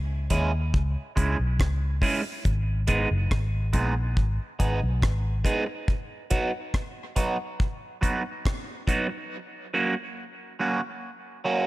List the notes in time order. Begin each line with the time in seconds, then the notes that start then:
Already playing: C#2
0.30 D#2 G#3 C#4 E4 G#4, kick, closed hi-hat
0.74 C#2, kick
1.16 C#2 G#3 C#4 E4 G#4, kick, closed hi-hat
1.40 B1
1.60 C#2, kick, cross-stick
2.02 G#3 C#4 E4 G#4, kick, open hi-hat
2.45 G#1, kick, hi-hat pedal
2.87 G#3 B3 D#4 G#4, kick, closed hi-hat
3.11 F#1
3.31 G#1, kick, cross-stick
3.73 A#1 G#3 B3 D#4 G#4, kick, closed hi-hat
4.17 G#1, kick
4.59 G#1 G#3 B3 D#4 G#4, kick, closed hi-hat
4.82 B1
5.02 G#1, kick, cross-stick
5.44 G#3 B3 D#4 G#4, kick, closed hi-hat
5.66 muted clean electric guitar stroke
5.88 kick
6.30 F#3 B3 D#4 F#4, kick, closed hi-hat
6.74 kick, cross-stick
7.16 F#3 B3 D#4 F#4, kick, closed hi-hat
7.60 kick
8.01 F#3 B3 D#4 F#4, kick, closed hi-hat
8.45 kick, cross-stick
8.87 F#3 B3 D#4 F#4, kick, closed hi-hat
9.09 muted clean electric guitar stroke
9.74 F#3 A#3 C#4 F#4
10.59 F#3 A#3 C#4 F#4
11.44 F#3 A#3 C#4 F#4